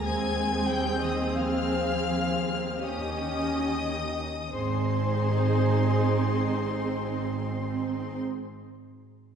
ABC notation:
X:1
M:3/4
L:1/16
Q:1/4=37
K:Ab
V:1 name="Violin section"
a'2 g' e' f'4 e'4 | c'12 |]
V:2 name="Violin section"
a2 g e f4 e4 | c12 |]
V:3 name="Viola section"
[CA]8 [DG]4 | [EA]12 |]
V:4 name="Cello section" clef=bass
A,2 G, E, F,4 E,4 | C12 |]
V:5 name="Double bass section" clef=bass
E,,12 | A,,,12 |]